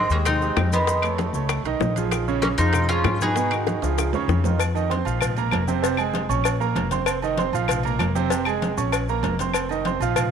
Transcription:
0.10 upright bass D#2, grand piano G#3 G4 G#4, mandolin A#3 C#4, high bongo, high conga, maracas
0.25 mandolin C4 D#4, high bongo, high conga, low conga, high timbale, claves, maracas
0.41 grand piano G#3 G4 G#4, high bongo, high conga, maracas
0.56 upright bass F2, high bongo, low bongo, high conga, high timbale, low timbale, claves, maracas
0.72 grand piano D#3 D#4 D#5, mandolin G#3 B3, high bongo, high conga, maracas
0.87 grand piano D#3 D#4 D#5, high bongo, high conga, high timbale, maracas
1.02 grand piano A3 A4 C#5, high conga, high timbale, claves, maracas
1.18 high bongo, high conga, high timbale, low timbale, maracas
1.33 upright bass C#2, grand piano A3 A4 C#5, high bongo, high conga, maracas
1.49 high bongo, high conga, high timbale, claves, maracas
1.64 upright bass B1, grand piano D#3 D#4 D#5, high bongo, high conga, high timbale, maracas
1.80 upright bass A#1, high bongo, low bongo, high conga, low timbale, maracas
1.96 grand piano F3 F4 G#4, high conga, high timbale, maracas
2.11 high bongo, high conga, high timbale, claves, maracas
2.27 grand piano C#3 C#4 C#5, high conga, maracas
2.42 mandolin A#3 C#4, high bongo, high conga, high timbale, low timbale, maracas
2.58 upright bass F2, grand piano F3 F4 G#4, mandolin C4 D#4, high bongo, high conga, maracas
2.73 high bongo, high conga, low conga, high timbale, claves, maracas
2.89 grand piano F3 F4 G#4, mandolin C#4 F4, high bongo, high conga, maracas
3.04 upright bass G#2, high bongo, low bongo, high conga, high timbale, low timbale, claves, maracas
3.20 grand piano B2 B3 B4, mandolin D#4 G#4, high bongo, high conga, maracas
3.36 grand piano B2 B3 B4, high bongo, high conga, high timbale, maracas
3.51 grand piano D#3 D#4 F#4, high conga, high timbale, claves, maracas
3.67 high bongo, high conga, high timbale, low timbale, maracas
3.82 upright bass C#2, grand piano F3 F4 G#4, high bongo, high conga, high timbale, maracas
3.98 high bongo, high conga, high timbale, claves, maracas
4.13 upright bass D#2, grand piano C#3 C#4 C#5, high bongo, high conga, low timbale, maracas
4.28 upright bass F2, high bongo, low bongo, high conga, maracas
4.44 grand piano D#3 D#4 F4, high conga, low timbale, maracas
4.60 cowbell, high conga, low agogo, claves, maracas
4.75 grand piano D#3 D#4 D#5, high conga, low agogo, maracas
4.90 grand piano C4 C5 C6, cowbell, high conga, low timbale, maracas
5.05 upright bass A#1, grand piano F3 F4 F5, high conga, low agogo, maracas
5.21 cowbell, high conga, low conga, low agogo, claves, maracas
5.36 grand piano A#3 A#4 A#5, high conga, low conga, low agogo, maracas
5.51 upright bass F1, cowbell, high conga, low timbale, low agogo, claves, maracas
5.67 grand piano C3 C4 C5, high conga, maracas
5.82 grand piano C3 C4 C5, cowbell, high conga, low agogo, maracas
5.97 grand piano G#3 G#4 G#5, high conga, low agogo, claves, maracas
6.14 cowbell, high conga, low timbale, maracas
6.29 upright bass A#1, grand piano C#4 C#5 C#6, high conga, low agogo, maracas
6.44 cowbell, high conga, low agogo, claves, maracas
6.60 grand piano A#3 A#4 A#5, high conga, maracas
6.75 upright bass F1, cowbell, high conga, low timbale, low agogo, maracas
6.91 grand piano C4 C5 C6, cowbell, high conga, maracas
7.06 cowbell, high conga, low agogo, claves, maracas
7.22 grand piano D#3 D#4 D#5, high conga, low agogo, maracas
7.37 grand piano C4 C5 C6, cowbell, high conga, low timbale, maracas
7.53 upright bass A#1, grand piano F3 F4 F5, high conga, low agogo, maracas
7.68 cowbell, high conga, low conga, low agogo, claves, maracas
7.83 grand piano A#3 A#4 A#5, high conga, low conga, low agogo, maracas
7.99 upright bass F1, cowbell, high conga, low timbale, low agogo, claves, maracas
8.15 grand piano C3 C4 C5, high conga, maracas
8.30 grand piano C3 C4 C5, cowbell, high conga, low agogo, maracas
8.45 grand piano G#3 G#4 G#5, high conga, low agogo, claves, maracas
8.62 cowbell, high conga, low timbale, maracas
8.77 upright bass A#1, grand piano C#4 C#5 C#6, high conga, low agogo, maracas
8.92 cowbell, high conga, low agogo, claves, maracas
9.09 grand piano A#3 A#4 A#5, high conga, maracas
9.23 upright bass F1, cowbell, high conga, low timbale, low agogo, maracas
9.39 grand piano C4 C5 C6, cowbell, high conga, maracas
9.53 cowbell, high conga, low agogo, claves, maracas
9.69 grand piano D#3 D#4 D#5, high conga, low agogo, maracas
9.85 grand piano C4 C5 C6, cowbell, high conga, low timbale, maracas
10.00 upright bass A#1, grand piano F3 F4 F5, low agogo, maracas
10.16 cowbell, high conga, low conga, low agogo, claves, maracas

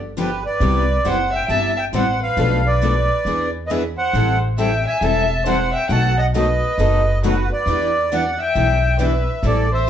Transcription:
Already playing: upright bass G1
0.17 steel-string acoustic guitar D3 F3 B3 D4 G4, violin G4, accordion B4
0.45 violin B4, accordion D5
0.60 upright bass C2, steel-string acoustic guitar C3 G3 B3 E4 G4
1.05 upright bass F#1, steel-string acoustic guitar C3 G3 B3 E4 G4, violin C5, accordion F#5
1.33 violin E5, accordion G5
1.48 upright bass G1, steel-string acoustic guitar C3 G3 B3 E4 G4, violin E5, accordion A5
1.77 violin E5, accordion G5
1.93 upright bass A1, steel-string acoustic guitar C3 G3 B3 E4 G4, violin C5, accordion F#5
2.22 violin B4, accordion F5
2.37 upright bass B1, steel-string acoustic guitar B2 F3 A3 D4 A4 B4
2.66 violin B4, accordion D5
2.83 steel-string acoustic guitar B2 F3 A3 D4 A4 B4
3.25 upright bass E2, steel-string acoustic guitar E3 B3 D4 G#4 B4
3.67 violin B4, accordion D#5
3.71 steel-string acoustic guitar E3 B3 D4 G#4 B4, violin B4, accordion E5
3.98 violin C5, accordion F#5
4.13 upright bass A1, steel-string acoustic guitar E3 G3 C4 E4 A4
4.58 steel-string acoustic guitar E3 G3 C4 E4 A4, violin E5, accordion G5
4.87 violin E5, accordion G#5
5.01 upright bass E1, steel-string acoustic guitar E3 G3 C4 E4 A4, violin E5, accordion A5
5.46 steel-string acoustic guitar E3 G3 C4 E4 A4, violin C5, accordion F#5
5.74 violin E5, accordion G5
5.89 upright bass B1, steel-string acoustic guitar B2 D#3 F#3 A3 B3 D#4 F#4 A4, violin F#5, accordion A5
6.18 violin D#5, accordion F#5
6.34 steel-string acoustic guitar B2 D#3 F#3 A3 B3 D#4 F#4 A4, violin B4, accordion D#5
6.78 upright bass F#1, steel-string acoustic guitar B2 D#3 F#3 A3 B3 D#4 F#4 A4
7.23 steel-string acoustic guitar B2 D#3 F#3 A3 B3 D#4 F#4 A4, violin F#4, accordion B4
7.52 violin B4, accordion D5
7.66 upright bass E2, steel-string acoustic guitar E3 G3 B3 D4 E4 G4 B4
8.12 steel-string acoustic guitar E3 G3 B3 D4 E4 G4 B4, violin D5, accordion F#5
8.40 violin E5, accordion G5
8.55 upright bass B1, steel-string acoustic guitar E3 G3 B3 D4 E4 G4 B4
8.99 steel-string acoustic guitar E3 G3 B3 D4 E4 G4 B4, violin B4, accordion E5
9.43 upright bass A1, steel-string acoustic guitar E3 G3 C4 E4 A4, violin A4, accordion D5
9.72 violin C5, accordion E5

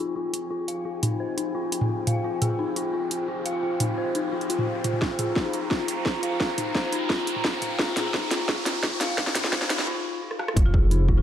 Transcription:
Already playing: synth bell D#4 G#4, analog synth pad F4 C5 G5 G#5, riser
0.00 synth bell F4
0.16 synth bell F4
0.33 synth bell F4, closed hi-hat
0.51 synth bell F4
0.68 synth bell F5, closed hi-hat
0.85 synth bell F4
1.02 synth bell D#4, closed hi-hat, mid tom
1.20 synth bell C5
1.37 synth bell D#4, closed hi-hat
1.55 synth bell F4
1.72 synth bell D#4, closed hi-hat
1.81 mid tom
1.89 synth bell F4
2.07 synth bell F5, closed hi-hat, mid tom
2.24 synth bell F4
2.42 synth bell G#4, closed hi-hat, mid tom
2.59 synth bell D#4
2.76 synth bell F4, closed hi-hat
2.94 synth bell F4
3.11 synth bell F4, closed hi-hat
3.28 synth bell F4
3.46 synth bell F5, closed hi-hat
3.63 synth bell F4
3.80 synth bell D#4, closed hi-hat, mid tom
3.98 synth bell C5
4.15 synth bell D#4, closed hi-hat
4.32 synth bell F4
4.41 closed hi-hat
4.50 synth bell F4, closed hi-hat
4.59 mid tom
4.67 synth bell F4
4.84 synth bell F4, closed hi-hat, mid tom
4.93 mid tom
5.01 synth bell F4, analog synth pad A#5, kick, snare
5.19 synth bell G#4, closed hi-hat, mid tom
5.36 synth bell D#4, kick, snare
5.53 synth bell F4, closed hi-hat
5.71 synth bell F4, kick, snare
5.88 synth bell F4, closed hi-hat
6.05 synth bell F4, kick, snare
6.23 synth bell F5, closed hi-hat
6.40 synth bell F4, kick, snare
6.58 synth bell D#4, closed hi-hat, mid tom
6.75 synth bell C5, kick, snare
6.92 synth bell D#4, closed hi-hat
7.10 synth bell F4, kick, snare
7.27 synth bell D#4, closed hi-hat
7.36 mid tom
7.44 synth bell F4, kick, snare
7.62 synth bell F5, closed hi-hat, mid tom
7.79 synth bell F4, kick, snare
7.96 synth bell G#4, snare, closed hi-hat, mid tom
8.14 synth bell D#4, kick, snare
8.31 synth bell F4, snare, closed hi-hat
8.48 synth bell F4, kick, snare
8.66 synth bell F4, snare, closed hi-hat
8.83 synth bell F4, kick, snare
9.00 synth bell F5, snare, closed hi-hat
9.18 kick, snare
9.27 snare
9.35 synth bell D#4, snare, closed hi-hat, mid tom
9.44 snare
9.52 synth bell C5, kick, snare
9.62 snare
9.70 synth bell D#4, snare, closed hi-hat
9.79 snare
9.87 synth bell F4
10.05 synth bell D#4
10.22 synth bell F4
10.31 cross-stick
10.39 synth bell F5, cross-stick
10.48 cross-stick
10.56 detuned saw bass F1, synth bell F4, analog synth pad F4 G#4 C5, kick, closed hi-hat, impact
10.66 marimba F4
10.74 synth bell G#4, kick
10.91 synth bell D#4, closed hi-hat
11.08 synth bell F4, kick, mid tom

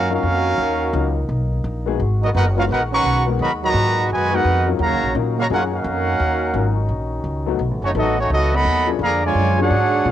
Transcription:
Already playing: upright bass F#2, trombone section D#3 A#3 D#4, trumpet section C#4 F#4 A#4 F5
0.10 grand piano F#3 C#4 D#4 F4 A#4, trombone section A#3 C#4 F#4, trumpet section C#4 F#4 A#4 F5
0.23 upright bass F2
0.58 upright bass D#2
0.93 upright bass C#2, grand piano F#3 C#4 D#4 F4 A#4
1.29 upright bass B1
1.64 upright bass A#1
1.86 grand piano G#3 B3 D#4 F#4 G#4
1.99 upright bass G#1, trombone section D#3 G#3 F#4
2.22 trombone section F#3 B3 D#4, trumpet section B3 F#4 A#4 D#5
2.34 upright bass F#1, trombone section B3 D#4 F#4, trumpet section D#4 A#4 B4 F#5
2.56 grand piano G#3 B3 D#4 F#4 A#4, trumpet section C#4 F#4 A#4 F5, trombone section F4
2.69 upright bass A#1, trombone section B3 D#4 F#4, trumpet section D#4 A#4 B4 F#5
2.92 trombone section D#3 F#3 C#4, trumpet section B4 F#5 A#5 C#6
3.04 upright bass B1
3.27 grand piano G#3 B3 D#4 F#4 A#4
3.39 upright bass D#2, trombone section D#3 F#3 B3, trumpet section F#4 A#4 D#5 B5
3.62 trombone section A#2 D#3 F#3, trumpet section F#4 B4 D#5 A#5
3.74 upright bass G#2
4.10 upright bass F#2, trombone section B2 D#3 G#3, trumpet section F#4 B4 D#5 G#5
4.32 grand piano G#3 B3 D#4 F#4 A#4, trombone section B3 D#4 F#4, trumpet section D#4 A#4 B4 F#5
4.44 upright bass F2
4.67 grand piano F#3 C#4 D#4 F4 A#4
4.79 upright bass D#2, trombone section C#3 D#3 F#3 A#3 C#4 D#4 F#4, trumpet section F#4 C#5 F5 A#5
4.92 upright bass C#2
5.03 upright bass A#1
5.14 upright bass A#2, grand piano F#3 C#4 D#4 F4 A#4
5.37 trombone section C#3 F#3 A#3, trumpet section F#4 C#5 F5 A#5
5.49 upright bass F#2, grand piano F#3 C#4 D#4 F4 G#4, trombone section A#3 C#4 F#4, trumpet section F4 A#4 F#5
5.53 trumpet section C#4
5.72 trombone section A#3 C#4 F#4, trumpet section C#4 A#4 F5 F#5
5.84 upright bass F2
6.20 upright bass D#2
6.54 upright bass G#1, grand piano F#3 C#4 D#4 F4 A#4
6.89 upright bass A#1
7.24 upright bass C#2
7.46 grand piano F#3 A3 B3 D#4 F#4
7.59 upright bass B1, trombone section A3 B3 F#4
7.71 upright bass A1
7.82 upright bass F#1, trumpet section A3 D#4 F#4 C#5, trombone section C#4
7.95 upright bass A1, grand piano F#3 A3 B3 D#4 A4, trombone section F#3 A3 D#4, trumpet section B3 F#4 A4
7.99 trumpet section D#5
8.19 trumpet section A3 D#4 F#4 C#5, trombone section C#4
8.30 upright bass C#2, trombone section F#3 A3 D#4, trumpet section B3 F#4 A4 D#5
8.54 trombone section D#3 F#3 B3, trumpet section A4 D#5 F#5 B5
8.65 upright bass D#2
8.87 grand piano F3 A#3 C#4 D4 G#4
8.99 upright bass F2, trombone section D3 F3 G#3 A#3 D4, trumpet section G#4 D5
9.03 trombone section D3, trumpet section F5 A#5
9.25 trombone section D3 F3 G#3, trumpet section F4 C#5 D5 G#5
9.35 upright bass F#2
9.58 grand piano F3 A#3 C#4 D4 G#4, trombone section G#3 D4 F#4
9.62 trumpet section D4 G#4 C#5 F#5
9.70 upright bass G#2
10.05 upright bass A#2, grand piano F3 A#3 C#4 D4 A#4, trombone section G#3 D4 F4

